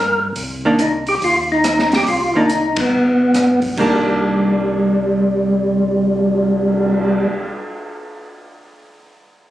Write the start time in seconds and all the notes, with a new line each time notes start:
Already playing: G2 A#4
0.36 C2, open hi-hat
0.65 D#3 A#3 D4
0.79 D#4, closed hi-hat
1.07 G4, open hi-hat
1.22 D#2 F4, open hi-hat
1.52 D#4
1.64 cross-stick, closed hi-hat
1.79 snare
1.92 snare, open hi-hat
1.96 G4
2.07 C2 F4, open hi-hat
2.35 D#3 A#3 D4 D#4
2.49 closed hi-hat
2.76 B3, kick, ride
2.92 G1
3.34 G2, cross-stick, closed hi-hat
3.62 kick, open hi-hat
3.77 C2 D#3 G3 A#3, kick, crash
3.81 D4
4.05 cymbal swell